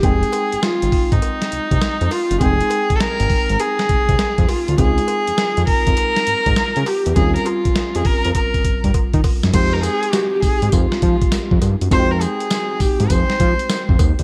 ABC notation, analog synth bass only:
X:1
M:4/4
L:1/16
Q:"Swing 16ths" 1/4=101
K:Fm
V:1 name="Analog synth bass" clef=bass
F,,,2 z A,,, z A,,, z A,,, z2 C,, C,, z F,, z _G,,, | F,,,2 z A,,, z A,,, z A,,, z2 C,, C,, z F,, z =D,, | D,,2 z F,, z F,, z F,, z2 A,, A,, z D, z =E,, | E,,2 z F,, z F,, z F,, z2 G,, G,, z E, z _G,, |
F,,3 z3 A,, A,, F,, z F, z2 F,, G,, _G,, | F,,3 z3 A,, A,, F,, z F, z2 F,, E,, =D,, |]